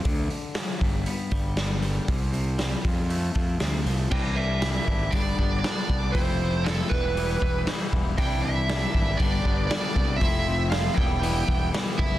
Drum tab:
CC |--------|--------|x-------|--------|
HH |oooooooo|oooooooo|--o-o-o-|o-o-o-o-|
SD |--o---o-|--o---o-|--o---o-|--o---o-|
BD |o--o-o--|o--o-o--|o--ooo-o|o--o-o-o|

CC |--------|--------|
HH |o-o-o-o-|o-o-o-o-|
SD |--o---o-|--o---o-|
BD |o--ooo-o|o--o-o-o|